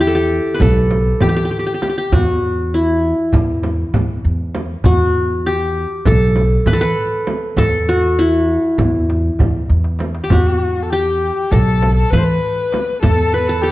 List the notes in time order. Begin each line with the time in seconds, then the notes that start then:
Already playing: E2 E4
0.00 G4
0.07 A4
0.15 G4
0.54 B4
0.60 B1 A4, darbuka dum, frame drum
0.91 darbuka tek, frame drum
1.20 E3 G4, darbuka dum, frame drum
1.29 G4
1.36 G4
1.45 G4
1.51 G4, darbuka ka
1.59 G4
1.66 G4, darbuka ka
1.74 G4
1.82 G4, darbuka tek, frame drum
1.89 G4
1.98 G4
2.12 E2 F#4, frame drum, darbuka dum
2.27 darbuka ka
2.43 darbuka ka
2.72 E4, darbuka ka
3.32 E2, darbuka dum, frame drum
3.63 darbuka tek, frame drum
3.94 E2, darbuka dum, frame drum
4.25 E2, darbuka ka
4.39 darbuka ka
4.55 darbuka tek, frame drum
4.84 E2 F#4, darbuka dum, frame drum
4.99 darbuka ka
5.15 darbuka ka
5.45 G4, darbuka ka
6.05 B1 A4, frame drum, darbuka dum
6.36 darbuka tek, frame drum
6.66 E3 B4, frame drum, darbuka dum
6.73 A4
6.81 B4
6.98 darbuka ka
7.12 darbuka ka
7.27 darbuka tek, frame drum
7.56 E2 A4, frame drum, darbuka dum
7.88 F#4, darbuka ka
8.19 E4
8.49 darbuka ka
8.78 E2, frame drum, darbuka dum
9.10 darbuka tek
9.39 E2, darbuka dum, frame drum
9.70 E2, darbuka tek
9.84 darbuka ka
9.99 darbuka tek, frame drum
10.15 darbuka ka
10.24 G4
10.30 E2 F#4, darbuka dum, frame drum
10.46 darbuka ka
10.61 darbuka ka
10.83 A4
10.90 G4
11.36 G4
11.51 B1 A4, frame drum, darbuka dum
11.83 darbuka tek, frame drum
11.97 A4
12.10 E3 B4, frame drum, darbuka dum
12.17 C5
12.24 B4
12.44 darbuka ka
12.59 darbuka ka
12.72 darbuka tek, frame drum
13.02 E2 A4, darbuka dum, frame drum
13.19 darbuka ka
13.33 B4, darbuka ka
13.47 A4
13.62 G4